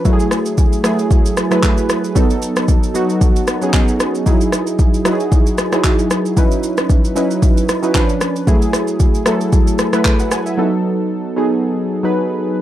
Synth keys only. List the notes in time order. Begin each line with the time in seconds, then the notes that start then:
0.05 F#3 A3 E4 F#4
0.13 G#4
0.84 F#3 A3 E4 G#4
1.51 F#3 A3 E4 B4
2.15 F#3 B3 D#4 A4
2.94 F#3 B3 D#4 F#4
3.61 F#3 B3 C#4 G#4
3.69 D#4
4.26 F#3 D#4 E4 G#4
5.05 F#3 D#4 E4 F#4
5.13 G#4
5.72 F#3 D#4 E4 G#4
6.37 F#3 C#4 D#4 E4 B4
7.15 F#3 C#4 D#4 E4 B4
7.82 F#3 C#4 D#4 E4 B4
7.94 F3 C#4 D4 B4
8.47 F#3 A3 E4 G#4
9.26 F#3 A3 E4 A4
9.93 F#3 A3 E4 B4
10.20 F#5
10.32 G#5
10.46 E5
10.57 F#3 B3 D#4 A4
11.36 F#3 B3 D#4 G#4
12.03 F#3 B3 D#4 B4